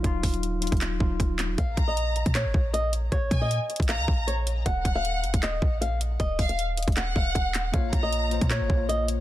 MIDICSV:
0, 0, Header, 1, 6, 480
1, 0, Start_track
1, 0, Key_signature, -5, "minor"
1, 0, Tempo, 384615
1, 54, Time_signature, 4, 2, 24, 8
1, 11487, End_track
2, 0, Start_track
2, 0, Title_t, "Violin section"
2, 0, Program_c, 0, 48
2, 2214, Note_on_c, 0, 82, 83
2, 2891, Note_off_c, 0, 82, 0
2, 4135, Note_on_c, 0, 80, 80
2, 4362, Note_off_c, 0, 80, 0
2, 4852, Note_on_c, 0, 82, 105
2, 5304, Note_off_c, 0, 82, 0
2, 6052, Note_on_c, 0, 78, 93
2, 6730, Note_off_c, 0, 78, 0
2, 7977, Note_on_c, 0, 77, 84
2, 8204, Note_off_c, 0, 77, 0
2, 8697, Note_on_c, 0, 78, 96
2, 9605, Note_off_c, 0, 78, 0
2, 9891, Note_on_c, 0, 82, 84
2, 10569, Note_off_c, 0, 82, 0
2, 11487, End_track
3, 0, Start_track
3, 0, Title_t, "Nylon-string guitar"
3, 0, Program_c, 1, 24
3, 1974, Note_on_c, 1, 77, 96
3, 2319, Note_off_c, 1, 77, 0
3, 2341, Note_on_c, 1, 75, 74
3, 2898, Note_off_c, 1, 75, 0
3, 2932, Note_on_c, 1, 73, 86
3, 3384, Note_off_c, 1, 73, 0
3, 3413, Note_on_c, 1, 75, 90
3, 3641, Note_off_c, 1, 75, 0
3, 3893, Note_on_c, 1, 73, 98
3, 4238, Note_off_c, 1, 73, 0
3, 4261, Note_on_c, 1, 75, 89
3, 4818, Note_off_c, 1, 75, 0
3, 4853, Note_on_c, 1, 77, 95
3, 5304, Note_off_c, 1, 77, 0
3, 5334, Note_on_c, 1, 73, 85
3, 5562, Note_off_c, 1, 73, 0
3, 5813, Note_on_c, 1, 78, 113
3, 6159, Note_off_c, 1, 78, 0
3, 6183, Note_on_c, 1, 77, 86
3, 6739, Note_off_c, 1, 77, 0
3, 6775, Note_on_c, 1, 75, 94
3, 7225, Note_off_c, 1, 75, 0
3, 7255, Note_on_c, 1, 77, 91
3, 7482, Note_off_c, 1, 77, 0
3, 7735, Note_on_c, 1, 75, 123
3, 8079, Note_off_c, 1, 75, 0
3, 8102, Note_on_c, 1, 77, 77
3, 8659, Note_off_c, 1, 77, 0
3, 8694, Note_on_c, 1, 78, 87
3, 8922, Note_off_c, 1, 78, 0
3, 8934, Note_on_c, 1, 77, 93
3, 9162, Note_off_c, 1, 77, 0
3, 9173, Note_on_c, 1, 78, 87
3, 9625, Note_off_c, 1, 78, 0
3, 9653, Note_on_c, 1, 77, 99
3, 9998, Note_off_c, 1, 77, 0
3, 10021, Note_on_c, 1, 75, 78
3, 10578, Note_off_c, 1, 75, 0
3, 10612, Note_on_c, 1, 73, 87
3, 11064, Note_off_c, 1, 73, 0
3, 11093, Note_on_c, 1, 75, 88
3, 11321, Note_off_c, 1, 75, 0
3, 11487, End_track
4, 0, Start_track
4, 0, Title_t, "Tine electric piano"
4, 0, Program_c, 2, 4
4, 0, Control_c, 2, 64, 127
4, 0, Note_on_c, 2, 54, 80
4, 0, Note_on_c, 2, 63, 70
4, 0, Note_on_c, 2, 65, 89
4, 33, Note_off_c, 2, 54, 0
4, 33, Note_on_c, 2, 54, 101
4, 52, Note_off_c, 2, 63, 0
4, 52, Note_on_c, 2, 63, 97
4, 73, Note_off_c, 2, 65, 0
4, 73, Note_on_c, 2, 65, 116
4, 685, Note_off_c, 2, 54, 0
4, 695, Note_off_c, 2, 63, 0
4, 705, Note_off_c, 2, 65, 0
4, 752, Note_on_c, 2, 54, 76
4, 773, Note_on_c, 2, 63, 66
4, 792, Note_on_c, 2, 65, 82
4, 1191, Note_off_c, 2, 54, 0
4, 1201, Note_off_c, 2, 63, 0
4, 1211, Note_off_c, 2, 65, 0
4, 1233, Note_on_c, 2, 54, 74
4, 1253, Note_on_c, 2, 63, 64
4, 1273, Note_on_c, 2, 65, 78
4, 1885, Note_off_c, 2, 54, 0
4, 1895, Note_off_c, 2, 63, 0
4, 1905, Note_off_c, 2, 65, 0
4, 1990, Control_c, 2, 64, 0
4, 9636, Note_on_c, 2, 58, 103
4, 9656, Note_on_c, 2, 65, 92
4, 9676, Note_on_c, 2, 73, 114
4, 9873, Control_c, 2, 64, 127
4, 10287, Note_off_c, 2, 58, 0
4, 10297, Note_off_c, 2, 65, 0
4, 10306, Note_off_c, 2, 73, 0
4, 10353, Note_on_c, 2, 58, 77
4, 10373, Note_on_c, 2, 65, 72
4, 10392, Note_on_c, 2, 72, 81
4, 10469, Note_off_c, 2, 58, 0
4, 10484, Note_on_c, 2, 58, 70
4, 10486, Note_off_c, 2, 65, 0
4, 10495, Note_off_c, 2, 72, 0
4, 10503, Note_on_c, 2, 65, 66
4, 10523, Note_on_c, 2, 73, 83
4, 10806, Note_off_c, 2, 58, 0
4, 10816, Note_off_c, 2, 65, 0
4, 10826, Note_off_c, 2, 73, 0
4, 10835, Note_on_c, 2, 58, 85
4, 10855, Note_on_c, 2, 65, 72
4, 10875, Note_on_c, 2, 73, 89
4, 11486, Note_off_c, 2, 58, 0
4, 11487, Note_off_c, 2, 65, 0
4, 11487, Note_off_c, 2, 73, 0
4, 11487, End_track
5, 0, Start_track
5, 0, Title_t, "808-style bass"
5, 0, Program_c, 3, 38
5, 53, Note_on_c, 3, 27, 111
5, 284, Note_off_c, 3, 27, 0
5, 292, Note_on_c, 3, 27, 109
5, 876, Note_off_c, 3, 27, 0
5, 900, Note_on_c, 3, 27, 104
5, 1239, Note_off_c, 3, 27, 0
5, 1253, Note_on_c, 3, 27, 106
5, 1484, Note_off_c, 3, 27, 0
5, 1495, Note_on_c, 3, 27, 104
5, 1955, Note_off_c, 3, 27, 0
5, 1974, Note_on_c, 3, 34, 113
5, 2204, Note_off_c, 3, 34, 0
5, 2212, Note_on_c, 3, 34, 108
5, 2796, Note_off_c, 3, 34, 0
5, 2820, Note_on_c, 3, 46, 105
5, 3060, Note_on_c, 3, 32, 101
5, 3079, Note_off_c, 3, 46, 0
5, 3168, Note_off_c, 3, 32, 0
5, 3173, Note_on_c, 3, 34, 105
5, 3864, Note_off_c, 3, 34, 0
5, 3893, Note_on_c, 3, 34, 112
5, 4124, Note_off_c, 3, 34, 0
5, 4132, Note_on_c, 3, 46, 109
5, 4485, Note_off_c, 3, 46, 0
5, 4740, Note_on_c, 3, 34, 108
5, 4982, Note_on_c, 3, 37, 100
5, 5000, Note_off_c, 3, 34, 0
5, 5085, Note_off_c, 3, 37, 0
5, 5093, Note_on_c, 3, 34, 106
5, 5784, Note_off_c, 3, 34, 0
5, 5814, Note_on_c, 3, 27, 110
5, 6044, Note_off_c, 3, 27, 0
5, 6053, Note_on_c, 3, 27, 110
5, 6535, Note_on_c, 3, 30, 103
5, 6554, Note_off_c, 3, 27, 0
5, 6655, Note_off_c, 3, 30, 0
5, 6661, Note_on_c, 3, 27, 99
5, 7000, Note_off_c, 3, 27, 0
5, 7014, Note_on_c, 3, 34, 109
5, 7705, Note_off_c, 3, 34, 0
5, 7734, Note_on_c, 3, 27, 111
5, 7964, Note_off_c, 3, 27, 0
5, 7973, Note_on_c, 3, 27, 110
5, 8556, Note_off_c, 3, 27, 0
5, 8581, Note_on_c, 3, 27, 101
5, 8920, Note_off_c, 3, 27, 0
5, 8933, Note_on_c, 3, 27, 106
5, 9164, Note_off_c, 3, 27, 0
5, 9175, Note_on_c, 3, 27, 105
5, 9635, Note_off_c, 3, 27, 0
5, 9654, Note_on_c, 3, 34, 110
5, 9884, Note_off_c, 3, 34, 0
5, 9893, Note_on_c, 3, 34, 109
5, 10476, Note_off_c, 3, 34, 0
5, 10501, Note_on_c, 3, 46, 105
5, 10742, Note_on_c, 3, 32, 100
5, 10760, Note_off_c, 3, 46, 0
5, 10848, Note_off_c, 3, 32, 0
5, 10854, Note_on_c, 3, 34, 106
5, 11487, Note_off_c, 3, 34, 0
5, 11487, End_track
6, 0, Start_track
6, 0, Title_t, "Drums"
6, 53, Note_on_c, 9, 36, 116
6, 53, Note_on_c, 9, 42, 75
6, 178, Note_off_c, 9, 36, 0
6, 178, Note_off_c, 9, 42, 0
6, 292, Note_on_c, 9, 36, 98
6, 293, Note_on_c, 9, 42, 61
6, 294, Note_on_c, 9, 46, 80
6, 417, Note_off_c, 9, 36, 0
6, 418, Note_off_c, 9, 42, 0
6, 419, Note_off_c, 9, 46, 0
6, 420, Note_on_c, 9, 42, 60
6, 539, Note_off_c, 9, 42, 0
6, 539, Note_on_c, 9, 42, 73
6, 664, Note_off_c, 9, 42, 0
6, 773, Note_on_c, 9, 42, 80
6, 837, Note_off_c, 9, 42, 0
6, 837, Note_on_c, 9, 42, 69
6, 900, Note_on_c, 9, 36, 103
6, 901, Note_off_c, 9, 42, 0
6, 901, Note_on_c, 9, 42, 58
6, 958, Note_off_c, 9, 42, 0
6, 958, Note_on_c, 9, 42, 49
6, 1013, Note_off_c, 9, 42, 0
6, 1013, Note_on_c, 9, 42, 78
6, 1014, Note_on_c, 9, 39, 124
6, 1025, Note_off_c, 9, 36, 0
6, 1138, Note_off_c, 9, 39, 0
6, 1138, Note_off_c, 9, 42, 0
6, 1253, Note_on_c, 9, 36, 95
6, 1378, Note_off_c, 9, 36, 0
6, 1494, Note_on_c, 9, 36, 98
6, 1499, Note_on_c, 9, 42, 72
6, 1619, Note_off_c, 9, 36, 0
6, 1624, Note_off_c, 9, 42, 0
6, 1733, Note_on_c, 9, 39, 93
6, 1736, Note_on_c, 9, 42, 87
6, 1858, Note_off_c, 9, 39, 0
6, 1861, Note_off_c, 9, 42, 0
6, 1973, Note_on_c, 9, 36, 119
6, 1974, Note_on_c, 9, 42, 76
6, 2098, Note_off_c, 9, 36, 0
6, 2099, Note_off_c, 9, 42, 0
6, 2212, Note_on_c, 9, 36, 102
6, 2214, Note_on_c, 9, 42, 74
6, 2337, Note_off_c, 9, 36, 0
6, 2339, Note_off_c, 9, 42, 0
6, 2459, Note_on_c, 9, 42, 74
6, 2584, Note_off_c, 9, 42, 0
6, 2693, Note_on_c, 9, 42, 48
6, 2818, Note_off_c, 9, 42, 0
6, 2820, Note_on_c, 9, 36, 105
6, 2821, Note_on_c, 9, 42, 86
6, 2932, Note_off_c, 9, 42, 0
6, 2932, Note_on_c, 9, 42, 79
6, 2933, Note_on_c, 9, 39, 121
6, 2945, Note_off_c, 9, 36, 0
6, 3057, Note_off_c, 9, 39, 0
6, 3057, Note_off_c, 9, 42, 0
6, 3173, Note_on_c, 9, 36, 96
6, 3297, Note_off_c, 9, 36, 0
6, 3420, Note_on_c, 9, 42, 71
6, 3545, Note_off_c, 9, 42, 0
6, 3657, Note_on_c, 9, 42, 85
6, 3781, Note_off_c, 9, 42, 0
6, 3893, Note_on_c, 9, 36, 125
6, 3894, Note_on_c, 9, 42, 79
6, 4018, Note_off_c, 9, 36, 0
6, 4019, Note_off_c, 9, 42, 0
6, 4132, Note_on_c, 9, 36, 101
6, 4135, Note_on_c, 9, 42, 74
6, 4257, Note_off_c, 9, 36, 0
6, 4259, Note_off_c, 9, 42, 0
6, 4379, Note_on_c, 9, 42, 73
6, 4504, Note_off_c, 9, 42, 0
6, 4613, Note_on_c, 9, 42, 50
6, 4694, Note_off_c, 9, 42, 0
6, 4694, Note_on_c, 9, 42, 68
6, 4740, Note_on_c, 9, 36, 103
6, 4773, Note_off_c, 9, 42, 0
6, 4773, Note_on_c, 9, 42, 84
6, 4851, Note_off_c, 9, 42, 0
6, 4851, Note_on_c, 9, 42, 75
6, 4852, Note_on_c, 9, 39, 127
6, 4865, Note_off_c, 9, 36, 0
6, 4976, Note_off_c, 9, 42, 0
6, 4977, Note_off_c, 9, 39, 0
6, 5093, Note_on_c, 9, 36, 100
6, 5218, Note_off_c, 9, 36, 0
6, 5339, Note_on_c, 9, 42, 71
6, 5464, Note_off_c, 9, 42, 0
6, 5577, Note_on_c, 9, 42, 86
6, 5702, Note_off_c, 9, 42, 0
6, 5814, Note_on_c, 9, 36, 120
6, 5814, Note_on_c, 9, 42, 78
6, 5939, Note_off_c, 9, 36, 0
6, 5939, Note_off_c, 9, 42, 0
6, 6053, Note_on_c, 9, 36, 97
6, 6055, Note_on_c, 9, 42, 76
6, 6178, Note_off_c, 9, 36, 0
6, 6180, Note_off_c, 9, 42, 0
6, 6300, Note_on_c, 9, 42, 75
6, 6425, Note_off_c, 9, 42, 0
6, 6535, Note_on_c, 9, 42, 51
6, 6659, Note_off_c, 9, 42, 0
6, 6661, Note_on_c, 9, 36, 103
6, 6662, Note_on_c, 9, 42, 86
6, 6773, Note_off_c, 9, 42, 0
6, 6773, Note_on_c, 9, 42, 76
6, 6774, Note_on_c, 9, 39, 122
6, 6786, Note_off_c, 9, 36, 0
6, 6898, Note_off_c, 9, 42, 0
6, 6899, Note_off_c, 9, 39, 0
6, 7014, Note_on_c, 9, 36, 100
6, 7139, Note_off_c, 9, 36, 0
6, 7261, Note_on_c, 9, 42, 71
6, 7386, Note_off_c, 9, 42, 0
6, 7499, Note_on_c, 9, 42, 88
6, 7624, Note_off_c, 9, 42, 0
6, 7734, Note_on_c, 9, 36, 123
6, 7735, Note_on_c, 9, 42, 78
6, 7859, Note_off_c, 9, 36, 0
6, 7860, Note_off_c, 9, 42, 0
6, 7973, Note_on_c, 9, 36, 96
6, 7975, Note_on_c, 9, 42, 64
6, 7976, Note_on_c, 9, 46, 78
6, 8098, Note_off_c, 9, 36, 0
6, 8099, Note_off_c, 9, 42, 0
6, 8101, Note_off_c, 9, 46, 0
6, 8102, Note_on_c, 9, 42, 63
6, 8222, Note_off_c, 9, 42, 0
6, 8222, Note_on_c, 9, 42, 71
6, 8347, Note_off_c, 9, 42, 0
6, 8455, Note_on_c, 9, 42, 80
6, 8518, Note_off_c, 9, 42, 0
6, 8518, Note_on_c, 9, 42, 72
6, 8581, Note_on_c, 9, 36, 104
6, 8582, Note_off_c, 9, 42, 0
6, 8582, Note_on_c, 9, 42, 60
6, 8639, Note_off_c, 9, 42, 0
6, 8639, Note_on_c, 9, 42, 48
6, 8693, Note_off_c, 9, 42, 0
6, 8693, Note_on_c, 9, 42, 80
6, 8694, Note_on_c, 9, 39, 127
6, 8706, Note_off_c, 9, 36, 0
6, 8818, Note_off_c, 9, 42, 0
6, 8819, Note_off_c, 9, 39, 0
6, 8934, Note_on_c, 9, 36, 99
6, 9058, Note_off_c, 9, 36, 0
6, 9175, Note_on_c, 9, 36, 103
6, 9180, Note_on_c, 9, 42, 72
6, 9300, Note_off_c, 9, 36, 0
6, 9305, Note_off_c, 9, 42, 0
6, 9415, Note_on_c, 9, 39, 98
6, 9418, Note_on_c, 9, 42, 86
6, 9539, Note_off_c, 9, 39, 0
6, 9542, Note_off_c, 9, 42, 0
6, 9654, Note_on_c, 9, 36, 116
6, 9655, Note_on_c, 9, 42, 74
6, 9779, Note_off_c, 9, 36, 0
6, 9780, Note_off_c, 9, 42, 0
6, 9893, Note_on_c, 9, 36, 98
6, 9896, Note_on_c, 9, 42, 74
6, 10018, Note_off_c, 9, 36, 0
6, 10021, Note_off_c, 9, 42, 0
6, 10140, Note_on_c, 9, 42, 72
6, 10265, Note_off_c, 9, 42, 0
6, 10375, Note_on_c, 9, 42, 50
6, 10500, Note_off_c, 9, 42, 0
6, 10501, Note_on_c, 9, 36, 101
6, 10502, Note_on_c, 9, 42, 83
6, 10614, Note_off_c, 9, 42, 0
6, 10614, Note_on_c, 9, 39, 123
6, 10614, Note_on_c, 9, 42, 74
6, 10626, Note_off_c, 9, 36, 0
6, 10738, Note_off_c, 9, 42, 0
6, 10739, Note_off_c, 9, 39, 0
6, 10854, Note_on_c, 9, 36, 98
6, 10979, Note_off_c, 9, 36, 0
6, 11100, Note_on_c, 9, 42, 72
6, 11225, Note_off_c, 9, 42, 0
6, 11337, Note_on_c, 9, 42, 86
6, 11462, Note_off_c, 9, 42, 0
6, 11487, End_track
0, 0, End_of_file